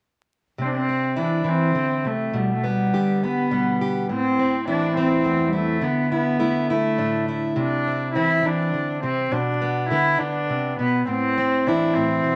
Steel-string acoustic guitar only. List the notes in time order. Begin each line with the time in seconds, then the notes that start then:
0.58 C3
0.89 C4
1.16 E3 E4
1.44 E3
1.75 D3
2.05 C3
2.33 B2
2.64 B3
2.93 D3 G4
3.24 B3
3.51 B2 G3
3.81 G4
4.09 A2
4.39 C4
4.67 E3 E4
4.97 C4
5.24 E2 A3
5.53 E4
5.81 D3
6.12 E4
6.39 A3 E4
6.70 E4
6.98 A2 D4
7.28 E4
7.56 C3
7.87 C4
8.15 E3 C4
8.43 E3
8.74 D3
9.03 C3
9.32 B2
9.62 B3
9.90 D3 B3
10.20 D3
10.50 C3
10.79 B2
11.07 A2
11.38 C4
11.67 E3 E4
11.96 A2
12.24 B2